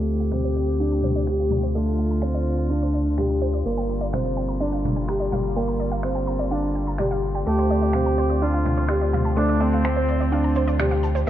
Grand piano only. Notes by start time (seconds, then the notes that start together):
Already playing: A3
0.32 C4
0.80 D4
1.28 G4
1.75 A3
2.23 C4
2.70 D4
3.18 G4
3.66 A#3
4.14 C4
4.61 D4
5.09 G4
5.56 A#3
6.04 C4
6.52 D4
6.99 G4
7.47 A3
7.94 C4
8.42 D4
8.89 G4
9.37 A3
9.84 C4
10.32 D4
10.80 G4